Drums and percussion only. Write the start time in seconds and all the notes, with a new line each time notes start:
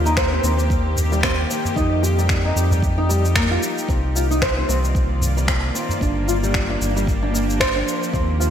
0.06 cabasa
0.17 finger snap, kick, cabasa
0.44 cabasa
0.59 cabasa
0.70 kick, cabasa
0.96 udu, cabasa
1.13 cabasa
1.23 finger snap, kick, cabasa
1.50 cabasa
1.65 udu, cabasa
1.76 kick, cabasa
2.04 cabasa
2.19 cabasa
2.29 finger snap, kick, cabasa
2.57 cabasa
2.71 udu, cabasa
2.82 kick, cabasa
3.10 cabasa
3.25 cabasa
3.36 finger snap, kick, cabasa
3.63 cabasa
3.78 cabasa
3.89 kick, cabasa
4.16 cabasa
4.32 cabasa
4.42 finger snap, kick, cabasa
4.70 cabasa
4.85 cabasa
4.95 kick, cabasa
5.21 udu, cabasa
5.38 cabasa
5.48 finger snap, kick, cabasa
5.75 cabasa
5.89 udu, cabasa
6.01 kick, cabasa
6.28 cabasa
6.44 cabasa
6.54 finger snap, kick, cabasa
6.82 cabasa
6.97 cabasa
7.07 kick, cabasa
7.35 cabasa
7.50 cabasa
7.60 finger snap, kick, cabasa
7.88 cabasa
8.03 cabasa
8.13 kick, cabasa
8.41 cabasa